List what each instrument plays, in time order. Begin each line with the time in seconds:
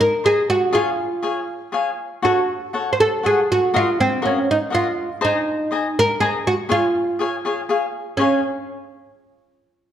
0.01 oud A#4
0.24 oud G#4, cavaquinho C5 D#5 G#5 A#5
0.50 oud F#4
0.73 oud F4, cavaquinho G#4 C#5 F5 G#5
1.22 cavaquinho G#4 C#5 F5 G#5
1.72 cavaquinho G#4 C#5 F5 G#5
2.22 cavaquinho F#4 A4 C#5 F#5, oud F#4
2.73 cavaquinho F#4 A4 C#5 F#5
2.93 oud C5
3.00 oud A4
3.23 cavaquinho F#4 A4 C#5 F#5, oud G#4
3.52 oud F#4
3.74 oud F4, cavaquinho F#4 A#4 D#5 F5
4.00 oud C4
4.22 oud C#4, cavaquinho F#4 A#4 D#5 F5
4.51 oud D#4
4.70 cavaquinho F#4 A#4 D#5 F5
4.75 oud F4
5.21 oud D#4, cavaquinho C5 D#5 G#5 A#5
5.71 cavaquinho C5 D#5 G#5 A#5
5.99 oud A#4
6.20 oud G#4, cavaquinho C5 D#5 G#5 A#5
6.47 oud F#4
6.69 oud F4, cavaquinho G#4 C#5 F5 G#5
7.19 cavaquinho G#4 C#5 F5 G#5
7.45 cavaquinho G#4 C#5 F5 G#5
7.69 cavaquinho G#4 C#5 F5 G#5
8.17 oud C#4, cavaquinho G#4 C#5 F5 G#5